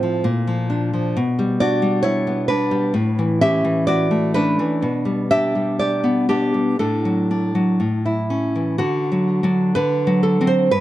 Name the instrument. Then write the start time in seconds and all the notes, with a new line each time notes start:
nylon-string guitar
Already playing: A2 A3 C4 F4
0.03 F3
0.24 A#2
0.47 F3
0.70 D4
0.93 F3
1.17 B2
1.39 G3
1.60 D4 F#4 D5
1.82 G3
2.03 E4 C#5
2.27 B3
2.48 D4 B4
2.71 G3
2.94 A2
3.19 E3
3.41 C#4 G4 E5
3.65 E3
3.87 F#4 D5
4.11 A3
4.34 C#4 D4 B4
4.59 E3
4.82 B2
5.05 G3
5.31 D4 G4 E5
5.55 G3
5.79 G4 D5
6.04 B3
6.29 B3 D4 G4
6.54 G3
6.79 A2 D4 A4
7.05 F#3
7.31 D4
7.55 F#3
7.80 A2
8.06 E4
8.30 C#4
8.56 E3
8.78 D3 F#4
9.12 F#3
9.43 F#3 D4
9.75 D3 B4
10.07 F#3
10.23 A4
10.41 F#3 C4
10.47 C5
10.71 G2 B4